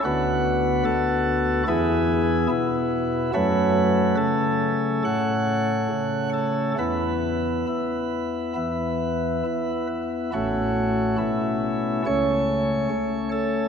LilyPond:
<<
  \new Staff \with { instrumentName = "Pipe organ" } { \time 4/4 \key a \major \tempo 4 = 70 << { b'4 a'4 gis'4 e'4 | b'4 a'4 fis''4. a'8 | b'2.~ b'8 r8 | fis'4 e'4 cis''4. a'8 | } \\ { <b fis'>2 <b e'>2 | <a cis'>1 | <b e'>2 <b e'>2 | <a cis'>2 <a cis'>2 | } >> }
  \new Staff \with { instrumentName = "Pipe organ" } { \clef bass \time 4/4 \key a \major <d, d>4 d,4 <e, e>4 b,4 | <fis, fis>4 cis4 a,4 cis4 | <e, e>4 e'4 <e, e>4 e'4 | <a,, a,>4 b,4 <cis, cis>4 cis'4 | }
>>